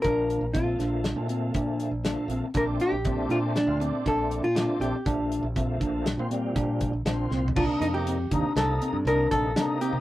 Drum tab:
CC |------------------------------|------------------------------|------------------------------|x-----------------------------|
HH |x--x--x--x--x--x--x--x--x--x--|x--x--x--x--x--x--x--x--x--x--|x--x--x--x--x--x--x--x--x-----|---x--x--x--x--x--x--x--x--x--|
SD |---------o--o-----------o-----|------------o-----------o-----|------------o-----------o--o--|------------o-----------o-----|
FT |------------------------------|------------------------------|-----------------------------o|------------------------------|
BD |o-----o-----------o-----------|o-----o-----------o-----------|o-----o--o--------o--o--------|o--------o-----------o--------|